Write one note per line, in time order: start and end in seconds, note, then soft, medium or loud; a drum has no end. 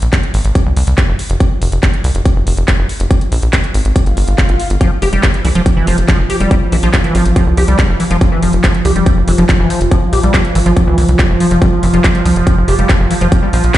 0.02 0.09 A#1 medium
0.02 closed hi-hat soft
0.13 kick loud
0.13 clap loud
0.13 closed hi-hat medium
0.23 closed hi-hat soft
0.34 0.41 G#1 loud
0.34 open hi-hat loud
0.45 0.52 G#1 medium
0.45 closed hi-hat medium
0.55 kick loud
0.55 closed hi-hat medium
0.66 0.73 C2 medium
0.77 0.84 C2 loud
0.77 open hi-hat loud
0.87 0.94 C2 medium
0.87 closed hi-hat medium
0.98 kick loud
0.98 clap loud
0.98 closed hi-hat medium
1.08 1.15 F1 medium
1.19 open hi-hat loud
1.30 1.37 F1 medium
1.30 closed hi-hat medium
1.40 kick loud
1.40 closed hi-hat medium
1.62 1.69 F1 loud
1.62 open hi-hat medium
1.72 1.79 F1 medium
1.72 closed hi-hat medium
1.83 kick loud
1.83 clap loud
1.83 closed hi-hat medium
1.94 closed hi-hat soft
2.04 2.11 C2 medium
2.04 open hi-hat loud
2.15 2.22 F1 medium
2.15 closed hi-hat medium
2.25 kick loud
2.25 closed hi-hat medium
2.36 2.43 F1 medium
2.47 2.54 F1 loud
2.47 open hi-hat loud
2.57 2.64 F1 medium
2.57 closed hi-hat medium
2.68 kick loud
2.68 clap loud
2.68 closed hi-hat medium
2.79 2.86 F1 medium
2.89 open hi-hat medium
3.00 3.07 F1 medium
3.00 closed hi-hat medium
3.11 kick loud
3.11 closed hi-hat medium
3.21 closed hi-hat soft
3.32 3.39 A#1 loud
3.32 open hi-hat loud
3.43 3.49 A#1 medium
3.43 closed hi-hat medium
3.53 kick loud
3.53 clap loud
3.53 closed hi-hat medium
3.64 closed hi-hat soft
3.74 3.81 G#1 medium
3.74 open hi-hat loud
3.85 3.92 G#1 medium
3.85 closed hi-hat medium
3.96 kick loud
3.96 closed hi-hat medium
3.96 swell medium
4.06 4.13 G1 medium
4.06 closed hi-hat soft
4.17 4.24 G1 loud
4.17 open hi-hat loud
4.28 4.35 G1 medium
4.28 closed hi-hat medium
4.38 kick loud
4.38 clap loud
4.38 closed hi-hat medium
4.49 4.56 G1 medium
4.49 closed hi-hat soft
4.60 open hi-hat medium
4.70 4.77 G1 medium
4.70 closed hi-hat medium
4.81 13.78 F3 medium
4.81 4.91 F3 medium
4.81 kick loud
4.81 closed hi-hat medium
5.02 5.09 F1 loud
5.02 5.09 G4 medium
5.02 open hi-hat loud
5.13 5.20 F1 medium
5.13 5.22 G3 medium
5.13 closed hi-hat soft
5.23 5.27 G3 medium
5.23 kick loud
5.23 clap loud
5.23 closed hi-hat medium
5.34 closed hi-hat soft
5.45 5.52 C2 medium
5.45 5.49 E3 medium
5.45 open hi-hat loud
5.55 5.62 F1 medium
5.55 5.62 F3 loud
5.55 closed hi-hat medium
5.66 kick loud
5.66 closed hi-hat medium
5.77 5.84 F1 medium
5.77 5.86 E3 medium
5.87 5.94 F1 loud
5.87 5.97 F3 medium
5.87 open hi-hat loud
5.98 6.05 F1 medium
5.98 closed hi-hat medium
6.08 6.18 F3 medium
6.08 kick loud
6.08 clap loud
6.08 closed hi-hat medium
6.19 6.26 F1 medium
6.30 6.36 G4 medium
6.30 open hi-hat loud
6.40 6.47 F1 medium
6.40 6.50 G3 medium
6.40 closed hi-hat medium
6.51 6.55 G3 medium
6.51 kick loud
6.51 closed hi-hat medium
6.72 6.79 A#1 loud
6.72 6.76 E3 medium
6.72 open hi-hat loud
6.83 6.90 A#1 medium
6.83 6.89 F3 loud
6.83 closed hi-hat medium
6.94 kick loud
6.94 clap loud
6.94 closed hi-hat medium
7.04 7.14 E3 medium
7.04 closed hi-hat soft
7.15 7.22 G#1 loud
7.15 7.25 F3 medium
7.15 open hi-hat loud
7.25 7.32 G#1 medium
7.25 closed hi-hat medium
7.36 7.46 F3 medium
7.36 kick loud
7.36 closed hi-hat medium
7.47 7.54 C2 medium
7.57 7.64 C2 medium
7.57 7.64 G4 medium
7.57 open hi-hat loud
7.68 7.75 C2 medium
7.68 7.78 G3 medium
7.68 closed hi-hat medium
7.79 7.83 G3 medium
7.79 kick loud
7.79 clap loud
7.79 closed hi-hat medium
7.89 7.96 F1 medium
8.00 8.04 E3 medium
8.00 open hi-hat loud
8.11 8.18 F1 medium
8.11 8.17 F3 loud
8.11 closed hi-hat medium
8.21 kick loud
8.21 closed hi-hat medium
8.32 8.42 E3 medium
8.43 8.49 F1 loud
8.43 8.52 F3 medium
8.43 open hi-hat loud
8.53 8.60 F1 medium
8.53 closed hi-hat soft
8.64 8.74 F3 medium
8.64 kick loud
8.64 clap loud
8.64 closed hi-hat medium
8.74 closed hi-hat soft
8.85 8.92 C2 loud
8.85 8.92 G4 medium
8.85 open hi-hat loud
8.96 9.03 F1 medium
8.96 9.05 G3 medium
8.96 closed hi-hat medium
9.06 9.10 G3 medium
9.06 kick loud
9.06 closed hi-hat medium
9.17 9.24 F1 medium
9.28 9.35 F1 medium
9.28 9.32 E3 medium
9.28 open hi-hat loud
9.38 9.45 F1 medium
9.38 9.45 F3 loud
9.38 closed hi-hat medium
9.49 kick loud
9.49 clap loud
9.49 closed hi-hat medium
9.60 9.67 F1 medium
9.60 9.69 E3 medium
9.70 9.80 F3 medium
9.70 open hi-hat loud
9.81 9.88 F1 medium
9.81 closed hi-hat medium
9.91 10.01 F3 medium
9.91 kick loud
9.91 closed hi-hat medium
10.13 10.20 A#1 loud
10.13 10.19 G4 medium
10.13 open hi-hat loud
10.23 10.30 A#1 medium
10.23 10.33 G3 medium
10.23 closed hi-hat medium
10.34 10.38 G3 medium
10.34 kick loud
10.34 clap loud
10.34 closed hi-hat medium
10.45 closed hi-hat soft
10.55 10.62 G#1 loud
10.55 10.59 E3 medium
10.55 open hi-hat loud
10.66 10.73 G#1 medium
10.66 10.72 F3 loud
10.66 closed hi-hat soft
10.77 kick loud
10.77 closed hi-hat medium
10.87 10.94 C2 medium
10.87 10.97 E3 medium
10.98 11.05 C2 medium
10.98 11.04 E3 medium
10.98 open hi-hat loud
11.08 11.15 C2 medium
11.08 closed hi-hat soft
11.19 11.26 G3 medium
11.19 kick loud
11.19 clap loud
11.19 closed hi-hat medium
11.30 11.37 F1 medium
11.40 11.47 F3 medium
11.40 open hi-hat loud
11.51 11.58 F1 medium
11.51 11.58 F3 medium
11.51 closed hi-hat soft
11.62 11.66 G3 medium
11.62 kick loud
11.62 closed hi-hat medium
11.83 11.90 F1 loud
11.83 11.87 E3 medium
11.83 open hi-hat loud
11.94 12.01 F1 medium
11.94 12.00 F3 loud
11.94 closed hi-hat medium
12.04 kick loud
12.04 clap loud
12.04 closed hi-hat medium
12.15 12.21 G3 medium
12.15 closed hi-hat soft
12.26 12.32 C2 medium
12.26 12.35 F3 medium
12.26 open hi-hat loud
12.36 12.43 F1 medium
12.36 closed hi-hat soft
12.47 12.57 F3 medium
12.47 kick loud
12.47 closed hi-hat medium
12.57 12.64 F1 medium
12.68 12.75 F1 medium
12.68 12.75 G4 medium
12.68 open hi-hat loud
12.79 12.86 F1 medium
12.79 12.88 G3 medium
12.79 closed hi-hat medium
12.89 kick loud
12.89 clap loud
12.89 closed hi-hat medium
13.00 13.07 F1 medium
13.11 13.15 E3 medium
13.11 open hi-hat loud
13.21 13.28 F1 medium
13.21 13.28 F3 loud
13.21 closed hi-hat medium
13.32 kick loud
13.32 closed hi-hat medium
13.43 13.49 G3 medium
13.53 13.60 A#1 loud
13.53 13.63 F3 medium
13.53 open hi-hat loud
13.64 13.71 A#1 medium
13.64 closed hi-hat medium
13.74 13.78 F3 medium
13.74 kick loud
13.74 clap loud
13.74 closed hi-hat medium